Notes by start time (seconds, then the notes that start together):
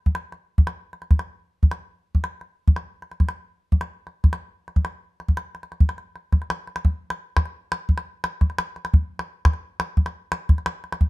0.06 calabash thump
0.15 calabash click
0.32 calabash click
0.58 calabash thump
0.67 calabash click
0.93 calabash click
1.02 calabash click
1.11 calabash thump, calabash click
1.19 calabash click
1.63 calabash thump
1.71 calabash click
2.15 calabash thump
2.24 calabash click
2.41 calabash click
2.68 calabash thump
2.76 calabash click
3.02 calabash click
3.12 calabash click
3.20 calabash thump, calabash click
3.29 calabash click
3.72 calabash thump
3.81 calabash click
4.07 calabash click
4.24 calabash thump, calabash click
4.33 calabash click
4.68 calabash click
4.76 calabash thump
4.85 calabash click
5.20 calabash click
5.29 calabash thump
5.37 calabash click
5.55 calabash click
5.63 calabash click
5.72 calabash click
5.80 calabash thump
5.89 calabash click
5.98 calabash click
6.16 calabash click
6.32 calabash thump, calabash click
6.42 calabash click
6.50 calabash click
6.67 calabash click
6.76 calabash click
6.85 calabash thump
7.10 calabash click
7.37 calabash thump, calabash click
7.46 calabash click
7.72 calabash click
7.89 calabash thump
7.98 calabash click
8.24 calabash click
8.41 calabash thump, calabash click
8.50 calabash click
8.58 calabash click
8.76 calabash click
8.85 calabash click
8.94 calabash thump
9.19 calabash click
9.45 calabash thump, calabash click
9.53 calabash click
9.80 calabash click
9.97 calabash thump
10.06 calabash click
10.32 calabash click
10.49 calabash thump, calabash click
10.58 calabash click
10.66 calabash click
10.84 calabash click
10.92 calabash click
11.01 calabash thump